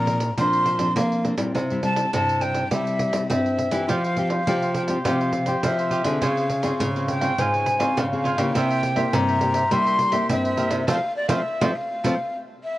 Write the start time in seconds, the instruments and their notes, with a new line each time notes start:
Already playing: nylon-string guitar A#2 F3 C4 D4, flute A#5
0.07 pandeiro
0.20 pandeiro
0.37 nylon-string guitar A#2 F3 C4 D4, flute C6, pandeiro
0.53 pandeiro
0.66 pandeiro
0.79 nylon-string guitar F3 C4 D4, pandeiro
0.96 nylon-string guitar F3 A#3, flute F5, pandeiro
1.12 pandeiro
1.24 nylon-string guitar F3 C4 D4, pandeiro
1.37 nylon-string guitar A#2 G3 C4 E4, pandeiro
1.55 nylon-string guitar C3, pandeiro
1.70 nylon-string guitar G3 C4 E4, pandeiro
1.83 nylon-string guitar G3 C4 E4, flute A5, pandeiro
1.96 pandeiro
2.13 nylon-string guitar G2 C3 G3 C4 E4, flute A5, pandeiro
2.29 pandeiro
2.41 flute G5, pandeiro
2.55 pandeiro
2.71 nylon-string guitar C3 G3 C4 E4, flute E5, pandeiro
2.87 pandeiro
2.99 pandeiro
3.13 nylon-string guitar G3 C4 E4, pandeiro
3.30 nylon-string guitar G2 C4, flute E5, pandeiro
3.46 pandeiro
3.58 pandeiro
3.71 nylon-string guitar E3 C4 F4 G4, pandeiro
3.88 nylon-string guitar F3, cavaquinho F4 G4 C5 F5, flute F5, pandeiro
4.04 cavaquinho C5 F5, pandeiro
4.16 nylon-string guitar C4 F4 G4, muted cavaquinho stroke, pandeiro
4.29 cavaquinho G4 C5 F5, pandeiro
4.47 nylon-string guitar C3 F3 C4 F4 G4, pandeiro
4.62 cavaquinho G4 C5 F5, pandeiro
4.74 flute G5, pandeiro
4.87 nylon-string guitar C4 F4 G4, cavaquinho G4 C5 F5, pandeiro
5.04 nylon-string guitar C3 F3 C4 F4 G4, cavaquinho F4 G4 C5 F5, flute F5, pandeiro
5.20 cavaquinho G4 C5 F5, pandeiro
5.32 muted cavaquinho stroke, pandeiro
5.46 nylon-string guitar C4 F4 G4, cavaquinho G4 C5 F5, pandeiro
5.63 nylon-string guitar C3 F3, flute E5, pandeiro
5.78 cavaquinho G4 C5 F5, pandeiro
5.90 cavaquinho F4 G4 C5 F5, pandeiro
6.04 nylon-string guitar D3 C4 F4 G#4, cavaquinho G4 C5 F5, pandeiro
6.21 nylon-string guitar C#3, cavaquinho F4 C5 C#5 F5, flute F5, pandeiro
6.37 cavaquinho C5 C#5 F5, pandeiro
6.49 muted cavaquinho stroke, pandeiro
6.62 nylon-string guitar C4 F4 G#4, cavaquinho C5 C#5 F5, pandeiro
6.80 nylon-string guitar G#2 C#3, pandeiro
6.95 nylon-string guitar C4 F4 G#4, cavaquinho C5 C#5 F5, pandeiro
7.08 flute G5, pandeiro
7.21 nylon-string guitar C4 F4 G#4, cavaquinho C5 C#5 F5, pandeiro
7.38 nylon-string guitar G#2 C#3 C4 F4 G#4, cavaquinho F4 C5 C#5 F5, flute G#5, pandeiro
7.53 cavaquinho C5 C#5 F5, pandeiro
7.66 muted cavaquinho stroke, pandeiro
7.79 nylon-string guitar C4 F4 G#4, cavaquinho C5 C#5 F5, pandeiro
7.97 nylon-string guitar G#2 C#3, flute F5, pandeiro
8.12 nylon-string guitar C4 F4 G#4, cavaquinho C5 C#5 F5, pandeiro
8.24 cavaquinho F4 C5 C#5 F5, pandeiro
8.37 nylon-string guitar C#3 A#3 E4 G4, cavaquinho C5 C#5 F5, pandeiro
8.54 nylon-string guitar C3, cavaquinho E4 A#4 C5 E5, flute G5, pandeiro
8.70 cavaquinho A#4 C5 E5, pandeiro
8.83 muted cavaquinho stroke, pandeiro
8.96 nylon-string guitar A#3 E4 G4, cavaquinho A#4 C5 E5, pandeiro
9.14 nylon-string guitar G2 C3, flute A#5, pandeiro
9.29 cavaquinho A#4 C5 E5, pandeiro
9.41 nylon-string guitar A#3 E4 G4, pandeiro
9.54 cavaquinho A#4 C5 E5, pandeiro
9.71 nylon-string guitar C3 G3 A#3 E4 G4, cavaquinho E4 A#4 C5 E5, flute C6, pandeiro
9.86 cavaquinho A#4 C5 E5, pandeiro
9.99 pandeiro
10.12 nylon-string guitar A#3 E4 G4, cavaquinho A#4 C5 E5, pandeiro
10.30 nylon-string guitar G2 C4, flute E5, pandeiro
10.44 cavaquinho A#4 C5 E5, pandeiro
10.56 nylon-string guitar A#3 E4 G4, cavaquinho E4 A#4 C5 E5, pandeiro
10.70 nylon-string guitar C3, cavaquinho A#4 C5 E5, pandeiro
10.87 nylon-string guitar F3 A3 C4 F4, cavaquinho A4 C5 F5, flute F5, pandeiro
11.16 flute D5
11.28 nylon-string guitar F3 A3 C4 F4, cavaquinho A4 C5 F5, flute E5, pandeiro
11.61 nylon-string guitar F3 A3 C4 F4, cavaquinho A4 C5 F5, pandeiro
11.75 flute F5
12.04 nylon-string guitar F3 A3 C4 F4, cavaquinho A4 C5 F5, pandeiro
12.63 flute E5